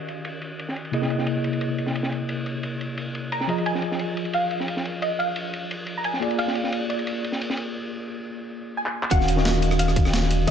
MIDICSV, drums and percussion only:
0, 0, Header, 1, 2, 480
1, 0, Start_track
1, 0, Tempo, 340909
1, 1309, Time_signature, 4, 2, 24, 8
1, 14795, End_track
2, 0, Start_track
2, 0, Title_t, "Drums"
2, 118, Note_on_c, 9, 51, 66
2, 259, Note_off_c, 9, 51, 0
2, 347, Note_on_c, 9, 51, 80
2, 488, Note_off_c, 9, 51, 0
2, 585, Note_on_c, 9, 51, 61
2, 726, Note_off_c, 9, 51, 0
2, 836, Note_on_c, 9, 51, 75
2, 965, Note_on_c, 9, 38, 41
2, 976, Note_off_c, 9, 51, 0
2, 1073, Note_on_c, 9, 51, 67
2, 1105, Note_off_c, 9, 38, 0
2, 1193, Note_off_c, 9, 51, 0
2, 1193, Note_on_c, 9, 51, 42
2, 1311, Note_off_c, 9, 51, 0
2, 1311, Note_on_c, 9, 51, 87
2, 1434, Note_on_c, 9, 38, 46
2, 1452, Note_off_c, 9, 51, 0
2, 1551, Note_on_c, 9, 51, 62
2, 1575, Note_off_c, 9, 38, 0
2, 1667, Note_on_c, 9, 38, 40
2, 1691, Note_off_c, 9, 51, 0
2, 1781, Note_on_c, 9, 51, 83
2, 1808, Note_off_c, 9, 38, 0
2, 1922, Note_off_c, 9, 51, 0
2, 2029, Note_on_c, 9, 51, 64
2, 2153, Note_off_c, 9, 51, 0
2, 2153, Note_on_c, 9, 51, 47
2, 2266, Note_off_c, 9, 51, 0
2, 2266, Note_on_c, 9, 51, 77
2, 2407, Note_off_c, 9, 51, 0
2, 2510, Note_on_c, 9, 51, 55
2, 2626, Note_on_c, 9, 38, 47
2, 2651, Note_off_c, 9, 51, 0
2, 2751, Note_on_c, 9, 51, 77
2, 2766, Note_off_c, 9, 38, 0
2, 2858, Note_on_c, 9, 38, 54
2, 2892, Note_off_c, 9, 51, 0
2, 2988, Note_on_c, 9, 51, 56
2, 2999, Note_off_c, 9, 38, 0
2, 3128, Note_off_c, 9, 51, 0
2, 3221, Note_on_c, 9, 51, 85
2, 3361, Note_off_c, 9, 51, 0
2, 3463, Note_on_c, 9, 51, 65
2, 3604, Note_off_c, 9, 51, 0
2, 3705, Note_on_c, 9, 51, 85
2, 3845, Note_off_c, 9, 51, 0
2, 3955, Note_on_c, 9, 51, 58
2, 4095, Note_off_c, 9, 51, 0
2, 4188, Note_on_c, 9, 51, 84
2, 4329, Note_off_c, 9, 51, 0
2, 4432, Note_on_c, 9, 51, 60
2, 4572, Note_off_c, 9, 51, 0
2, 4675, Note_on_c, 9, 51, 86
2, 4795, Note_on_c, 9, 38, 42
2, 4815, Note_off_c, 9, 51, 0
2, 4908, Note_on_c, 9, 51, 66
2, 4936, Note_off_c, 9, 38, 0
2, 5042, Note_off_c, 9, 51, 0
2, 5042, Note_on_c, 9, 51, 39
2, 5152, Note_off_c, 9, 51, 0
2, 5152, Note_on_c, 9, 51, 86
2, 5279, Note_on_c, 9, 38, 44
2, 5293, Note_off_c, 9, 51, 0
2, 5378, Note_on_c, 9, 51, 60
2, 5420, Note_off_c, 9, 38, 0
2, 5512, Note_on_c, 9, 38, 39
2, 5519, Note_off_c, 9, 51, 0
2, 5621, Note_on_c, 9, 51, 85
2, 5653, Note_off_c, 9, 38, 0
2, 5762, Note_off_c, 9, 51, 0
2, 5869, Note_on_c, 9, 51, 66
2, 5984, Note_off_c, 9, 51, 0
2, 5984, Note_on_c, 9, 51, 41
2, 6101, Note_off_c, 9, 51, 0
2, 6101, Note_on_c, 9, 51, 89
2, 6242, Note_off_c, 9, 51, 0
2, 6345, Note_on_c, 9, 51, 61
2, 6479, Note_on_c, 9, 38, 44
2, 6485, Note_off_c, 9, 51, 0
2, 6587, Note_on_c, 9, 51, 80
2, 6619, Note_off_c, 9, 38, 0
2, 6711, Note_on_c, 9, 38, 50
2, 6728, Note_off_c, 9, 51, 0
2, 6833, Note_on_c, 9, 51, 64
2, 6852, Note_off_c, 9, 38, 0
2, 6974, Note_off_c, 9, 51, 0
2, 7070, Note_on_c, 9, 51, 83
2, 7211, Note_off_c, 9, 51, 0
2, 7317, Note_on_c, 9, 51, 71
2, 7458, Note_off_c, 9, 51, 0
2, 7544, Note_on_c, 9, 51, 86
2, 7684, Note_off_c, 9, 51, 0
2, 7792, Note_on_c, 9, 51, 65
2, 7933, Note_off_c, 9, 51, 0
2, 8037, Note_on_c, 9, 51, 92
2, 8178, Note_off_c, 9, 51, 0
2, 8258, Note_on_c, 9, 51, 59
2, 8399, Note_off_c, 9, 51, 0
2, 8508, Note_on_c, 9, 51, 85
2, 8638, Note_on_c, 9, 38, 39
2, 8648, Note_off_c, 9, 51, 0
2, 8760, Note_on_c, 9, 51, 67
2, 8778, Note_off_c, 9, 38, 0
2, 8879, Note_off_c, 9, 51, 0
2, 8879, Note_on_c, 9, 51, 44
2, 8991, Note_off_c, 9, 51, 0
2, 8991, Note_on_c, 9, 51, 90
2, 9116, Note_on_c, 9, 38, 50
2, 9132, Note_off_c, 9, 51, 0
2, 9225, Note_on_c, 9, 51, 65
2, 9257, Note_off_c, 9, 38, 0
2, 9348, Note_on_c, 9, 38, 38
2, 9365, Note_off_c, 9, 51, 0
2, 9467, Note_on_c, 9, 51, 89
2, 9488, Note_off_c, 9, 38, 0
2, 9608, Note_off_c, 9, 51, 0
2, 9712, Note_on_c, 9, 51, 69
2, 9840, Note_off_c, 9, 51, 0
2, 9840, Note_on_c, 9, 51, 44
2, 9953, Note_off_c, 9, 51, 0
2, 9953, Note_on_c, 9, 51, 77
2, 10094, Note_off_c, 9, 51, 0
2, 10199, Note_on_c, 9, 51, 63
2, 10309, Note_on_c, 9, 38, 46
2, 10340, Note_off_c, 9, 51, 0
2, 10439, Note_on_c, 9, 51, 84
2, 10450, Note_off_c, 9, 38, 0
2, 10556, Note_on_c, 9, 38, 57
2, 10580, Note_off_c, 9, 51, 0
2, 10660, Note_on_c, 9, 51, 68
2, 10697, Note_off_c, 9, 38, 0
2, 10801, Note_off_c, 9, 51, 0
2, 12474, Note_on_c, 9, 39, 70
2, 12615, Note_off_c, 9, 39, 0
2, 12715, Note_on_c, 9, 39, 96
2, 12828, Note_on_c, 9, 36, 123
2, 12828, Note_on_c, 9, 51, 88
2, 12831, Note_on_c, 9, 42, 96
2, 12856, Note_off_c, 9, 39, 0
2, 12965, Note_on_c, 9, 38, 56
2, 12969, Note_off_c, 9, 36, 0
2, 12969, Note_off_c, 9, 51, 0
2, 12971, Note_off_c, 9, 42, 0
2, 13065, Note_on_c, 9, 51, 74
2, 13072, Note_on_c, 9, 42, 68
2, 13106, Note_off_c, 9, 38, 0
2, 13201, Note_on_c, 9, 38, 44
2, 13206, Note_off_c, 9, 51, 0
2, 13213, Note_off_c, 9, 42, 0
2, 13310, Note_off_c, 9, 38, 0
2, 13310, Note_on_c, 9, 38, 121
2, 13310, Note_on_c, 9, 42, 99
2, 13310, Note_on_c, 9, 51, 81
2, 13322, Note_off_c, 9, 38, 0
2, 13322, Note_on_c, 9, 38, 112
2, 13451, Note_off_c, 9, 42, 0
2, 13451, Note_off_c, 9, 51, 0
2, 13463, Note_off_c, 9, 38, 0
2, 13546, Note_on_c, 9, 51, 75
2, 13551, Note_on_c, 9, 42, 69
2, 13675, Note_on_c, 9, 37, 52
2, 13685, Note_off_c, 9, 51, 0
2, 13685, Note_on_c, 9, 51, 48
2, 13692, Note_off_c, 9, 42, 0
2, 13784, Note_off_c, 9, 51, 0
2, 13784, Note_on_c, 9, 51, 96
2, 13790, Note_on_c, 9, 42, 102
2, 13816, Note_off_c, 9, 37, 0
2, 13915, Note_on_c, 9, 37, 38
2, 13925, Note_off_c, 9, 51, 0
2, 13931, Note_off_c, 9, 42, 0
2, 14027, Note_on_c, 9, 36, 107
2, 14028, Note_on_c, 9, 42, 69
2, 14035, Note_on_c, 9, 51, 71
2, 14056, Note_off_c, 9, 37, 0
2, 14155, Note_on_c, 9, 37, 49
2, 14168, Note_off_c, 9, 36, 0
2, 14169, Note_off_c, 9, 42, 0
2, 14171, Note_on_c, 9, 38, 47
2, 14175, Note_off_c, 9, 51, 0
2, 14270, Note_off_c, 9, 38, 0
2, 14270, Note_on_c, 9, 38, 118
2, 14270, Note_on_c, 9, 42, 94
2, 14275, Note_on_c, 9, 51, 94
2, 14296, Note_off_c, 9, 37, 0
2, 14402, Note_off_c, 9, 38, 0
2, 14402, Note_on_c, 9, 38, 60
2, 14411, Note_off_c, 9, 42, 0
2, 14415, Note_off_c, 9, 51, 0
2, 14510, Note_on_c, 9, 42, 70
2, 14514, Note_on_c, 9, 51, 69
2, 14543, Note_off_c, 9, 38, 0
2, 14651, Note_off_c, 9, 42, 0
2, 14655, Note_off_c, 9, 51, 0
2, 14747, Note_on_c, 9, 36, 127
2, 14749, Note_on_c, 9, 42, 93
2, 14752, Note_on_c, 9, 51, 82
2, 14795, Note_off_c, 9, 36, 0
2, 14795, Note_off_c, 9, 42, 0
2, 14795, Note_off_c, 9, 51, 0
2, 14795, End_track
0, 0, End_of_file